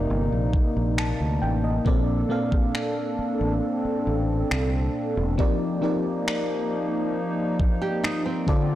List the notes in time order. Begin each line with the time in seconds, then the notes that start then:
Already playing: C3 A#3 C4 D#4 A#4 D5
0.10 G1
0.32 A#1
0.53 kick
0.77 A#1
0.98 A5, finger snap
1.20 D2
1.42 A1 G5
1.64 D#5
1.85 A#1 A#2 A#3 C4 D4 A4 D5, kick
2.29 A#2 A#3 C4 A4 F5
2.52 kick
2.75 finger snap
3.19 muted fingered electric bass stroke
3.41 A1
3.62 C4
3.85 muted fingered electric bass stroke
4.07 A1
4.51 C2, finger snap
5.17 E1
5.38 F3 A#3 C4 D#4 G4 A#4 D5, kick
5.82 F3 C4 D#4 G4 A#4 D5
6.28 finger snap
7.60 kick
7.82 G4
8.04 D#4, finger snap
8.26 C4
8.47 D3 C4 F4 A4 D5, kick